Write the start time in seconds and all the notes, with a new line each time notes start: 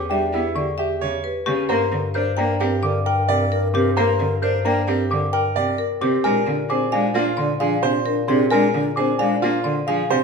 Already playing: E2 G4 C#5 D6
0.09 G3 D4 G4 E5 G5
0.32 B3 E4 G4
0.55 D3 G4 D5 C#6
0.78 G4 E5
1.01 C#3 G4 C#5
1.24 G4 B4
1.46 C#3 C#4 G4 C#6
1.69 G2 A#3 A#4 C5 A#5
1.92 D3 A#4
2.14 D4 A#4 C5 G6
2.37 A#3 D4 A#4 G5 A#5
2.60 C4 G4 A#4
2.83 D3 A#4 D5 D6
3.06 A#4 G5
3.28 C3 A#4 D5
3.52 A#4
3.74 C3 C4 G4 A#4 D6
3.96 A#3 A#4 C5 A#5
4.19 D3 A#4
4.42 D4 A#4 C5 G6
4.65 A#3 D4 A#4 G5 A#5
4.87 C4 G4 A#4
5.10 D3 A#4 D5 D6
5.33 A#4 G5
5.56 C3 A#4 D5
5.78 A#4
6.01 C3 C4 G4 D6
6.24 A#2 G#3 D4 A#4 G#5
6.46 D3 D4
6.68 C4 D4 G#4 C5 D6
6.92 G#3 D4 F5 G#5
7.14 A#3 D4 F4
7.37 D3 D4 D5 C6
7.60 F3 D4 G#4 F5
7.83 C3 D4 C5
8.06 D4 A#4
8.28 C3 C4 D4 G#4 C6
8.50 G#3 D4 A#4 G#5
8.74 D3 D4
8.96 C4 D4 G#4 C5 D6
9.19 G#3 D4 F5 G#5
9.42 A#3 D4 F4
9.64 D3 D4 D5 C6
9.87 F3 D4 G#4 F5
10.10 C3 D4 C5